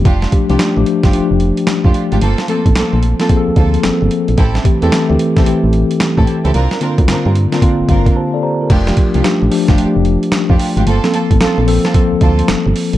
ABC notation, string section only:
X:1
M:4/4
L:1/16
Q:"Swing 16ths" 1/4=111
K:F
V:1 name="String section"
[A,DFG] z2 [A,DFG] z3 [A,DFG] z4 z [A,DFG] z [A,DFG] | [B,CFA] z [B,CFA] z [B,CFA] z2 [B,CFA] z2 [B,CFA] z4 z | [CEGA] z2 [CEGA] z3 [CEGA] z4 z [CEGA] z [CEGA] | [CDFB] z [CDFB] z [CDFB] z2 [CDFB] z2 [CDFB] z4 z |
[A,DFG] z2 [A,DFG] z3 [A,DFG] z4 z [A,DFG] z [A,DFG] | [B,CFA] z [B,CFA] z [B,CFA] z2 [B,CFA] z2 [B,CFA] z4 z |]